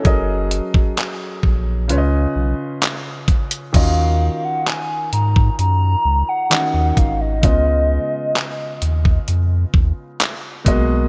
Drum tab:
CC |----------------|x---------------|----------------|
HH |x-x-x---x---x-xx|x-----x-x---x-x-|x-----x-x---x-x-|
CP |----x-------x---|----x-------x---|----x-------x---|
BD |o--o--o-------o-|o------o------o-|o------o--o---o-|